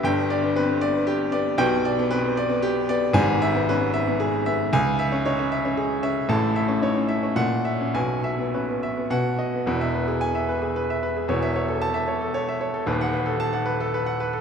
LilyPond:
<<
  \new Staff \with { instrumentName = "Grand piano" } { \time 3/4 \key g \major \tempo 4 = 114 << { g''4 r2 | g''4 r2 | \key e \major gis''4 r2 | gis''4 r2 |
a''4 r4 fis''4 | gis''4 r4 fis''4 | r4 gis''8 r4. | r4 a''8 r4. |
r4 a''8 r4. | } \\ { r8 d''8 b'8 d''8 g'8 d''8 | r8 d''8 b'8 d''8 g'8 d''8 | r8 e''8 b'8 e''8 gis'8 e''8 | r8 e''8 cis''8 e''8 gis'8 e''8 |
r8 e''8 cis''8 e''8 r8 e''8 | r8 e''8 b'8 e''8 r8 dis''8 | b'16 e''16 b'16 gis'8 e''16 b'16 gis'16 b'16 e''16 b'16 gis'16 | cis''16 e''16 cis''16 a'8 e''16 cis''16 a'16 cis''16 e''16 cis''16 a'16 |
b'16 fis''16 b'16 a'8 fis''16 b'16 a'16 b'16 fis''16 b'16 a'16 | } >> }
  \new Staff \with { instrumentName = "Grand piano" } { \time 3/4 \key g \major <g,, g,>8. b16 c'16 b8 b8 r16 b8 | <b,, b,>8. b16 c'16 b8 b8 r16 b8 | \key e \major <gis,, gis,>8. b16 cis'16 b8 b8 r16 b8 | cis,8. cis'16 dis'16 cis'8 cis'8 r16 cis'8 |
<a,, a,>8. cis'16 dis'16 cis'8 cis'16 ais,8. cis'16 | <b,, b,>8. b16 cis'16 b8 b16 b,8. b16 | <e,, e,>2. | <e,, e,>2. |
<dis,, dis,>2. | }
>>